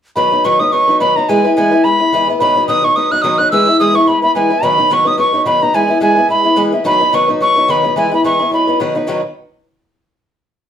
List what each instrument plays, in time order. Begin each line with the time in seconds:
0.16 steel-string acoustic guitar B2 D#3 F#3 B3 D#4 B4, tin whistle B5
0.32 steel-string acoustic guitar F#3 B3 D#4 B4
0.44 steel-string acoustic guitar B2 D#3 F#3 B3 D#4 B4, tin whistle C#6
0.59 steel-string acoustic guitar F#3 B3 D#4 B4, tin whistle D#6
0.72 steel-string acoustic guitar F#3 B3 D#4 B4, tin whistle C#6
0.88 steel-string acoustic guitar F#3 B3 D#4 B4
1.00 steel-string acoustic guitar B2 D#3 F#3 B3 D#4 B4, tin whistle B5
1.16 steel-string acoustic guitar F#3 B3 D#4 B4, tin whistle A#5
1.29 steel-string acoustic guitar E3 G#3 B3 E4 B4, tin whistle G#5
1.44 steel-string acoustic guitar B3 E4 B4
1.56 steel-string acoustic guitar E3 G#3 B3 E4 B4, tin whistle G#5
1.71 steel-string acoustic guitar B3 E4 B4
1.84 steel-string acoustic guitar G#3 B3 E4 B4, tin whistle B5
2.00 steel-string acoustic guitar B3 E4 B4
2.12 steel-string acoustic guitar E3 G#3 B3 E4 B4
2.28 steel-string acoustic guitar B3 E4 B4
2.40 steel-string acoustic guitar B2 D#3 F#3 B3 D#4 B4, tin whistle B5
2.56 steel-string acoustic guitar F#3 B3 D#4 B4
2.68 steel-string acoustic guitar B2 D#3 F#3 B3 D#4 B4, tin whistle D#6
2.83 steel-string acoustic guitar F#3 B3 D#4 B4, tin whistle C#6
2.96 steel-string acoustic guitar F#3 B3 D#4 B4, tin whistle D#6
3.11 steel-string acoustic guitar F#3 B3 D#4 B4, tin whistle F#6
3.22 steel-string acoustic guitar B2 D#3 F#3 B3 D#4 B4, tin whistle D#6
3.38 steel-string acoustic guitar F#3 B3 D#4 B4, tin whistle F#6
3.51 steel-string acoustic guitar E3 G#3 B3 E4 B4, tin whistle E6
3.67 steel-string acoustic guitar B3 E4 B4
3.80 steel-string acoustic guitar E3 G#3 B3 E4 B4, tin whistle D#6
3.94 steel-string acoustic guitar B3 E4 B4, tin whistle C#6
4.03 steel-string acoustic guitar G#3, tin whistle C#6
4.07 steel-string acoustic guitar B3 E4 B4, tin whistle B5
4.22 steel-string acoustic guitar B3 E4 B4, tin whistle B5
4.35 steel-string acoustic guitar E3 G#3 B3 E4 B4, tin whistle G#5
4.50 steel-string acoustic guitar B3 E4 B4
4.63 steel-string acoustic guitar B2 D#3 F#3 B3 D#4 B4, tin whistle B5
4.78 steel-string acoustic guitar F#3 B3 D#4 B4
4.90 steel-string acoustic guitar B2 D#3 F#3 B3 D#4 B4, tin whistle C#6
5.05 steel-string acoustic guitar F#3 B3 D#4 B4, tin whistle D#6
5.17 steel-string acoustic guitar F#3 B3 D#4 B4, tin whistle C#6
5.33 steel-string acoustic guitar F#3 B3 D#4 B4
5.45 steel-string acoustic guitar B2 D#3 F#3 B3 D#4 B4, tin whistle B5
5.62 steel-string acoustic guitar F#3 B3 D#4 B4, tin whistle A#5
5.74 steel-string acoustic guitar E3 G#3 B3 E4 B4, tin whistle G#5
5.88 steel-string acoustic guitar B3 E4 B4
6.00 steel-string acoustic guitar E3 G#3 B3 E4 B4, tin whistle G#5
6.16 steel-string acoustic guitar B3 E4 B4
6.29 steel-string acoustic guitar G#3 B3 E4 B4, tin whistle B5
6.44 steel-string acoustic guitar B3 E4 B4
6.56 steel-string acoustic guitar E3 G#3 B3 E4 B4
6.72 steel-string acoustic guitar B3 E4 B4
6.84 steel-string acoustic guitar B2 D#3 F#3 B3 D#4 B4, tin whistle B5
7.00 steel-string acoustic guitar F#3 B3 D#4 B4
7.13 steel-string acoustic guitar B2 D#3 F#3 B3 D#4 B4, tin whistle C#6
7.28 steel-string acoustic guitar F#3 B3 D#4 B4
7.40 steel-string acoustic guitar F#3 B3 D#4 B4, tin whistle C#6
7.56 steel-string acoustic guitar F#3 B3 D#4 B4
7.68 steel-string acoustic guitar B2 D#3 F#3 B3 D#4 B4, tin whistle B5
7.84 steel-string acoustic guitar F#3 B3 D#4 B4
7.96 steel-string acoustic guitar E3 G#3 B3 E4 B4, tin whistle G#5
8.11 steel-string acoustic guitar B3 E4 B4, tin whistle B5
8.24 steel-string acoustic guitar E3 G#3 B3 E4 B4, tin whistle C#6
8.39 steel-string acoustic guitar B3 E4 B4
8.51 steel-string acoustic guitar F#3 B3 D#4 B4, tin whistle B5
8.67 steel-string acoustic guitar F#3 B3 D#4 B4
8.80 steel-string acoustic guitar B2 D#3 F#3 B3 D#4 B4
8.95 steel-string acoustic guitar F#3 B3 D#4 B4
9.07 steel-string acoustic guitar B2 D#3 F#3 B3 D#4 B4